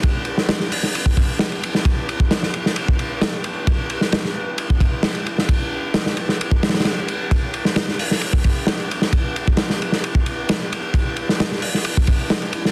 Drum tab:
RD |x---x---x-------x---x---x-x-x---|x---x---x---x---x---x---x---x---|x---x---x-------x---x---x-x-x---|x-------x---x---x---xxxxx---x---|
HH |------------o-------------------|--------------------------------|--------------------------------|--------------------------------|
SD |------o-o-o---o---------o-----o-|--------o-o---o---------o-------|------o-o-o-------------o-----o-|--------o-o---o-----ooooo-------|
BD |o-----------------o-o-----------|o-----o-----------o-------------|o-----------------o-o-----------|o-----------------o-------------|

RD |x---x---x-------x---x---x-x-x---|x---x---x---x---x---x---x---x---|x---x---x-------x---x---x-x-x---|
HH |------------o-------------------|--------------------------------|------------o-------------------|
SD |------o-o-o---o---------o-----o-|--------o-o---o---------o-------|------o-o-o---o---------o-----o-|
BD |o-----------------o-o-----------|o-----o-----------o-------------|o-----------------o-o-----------|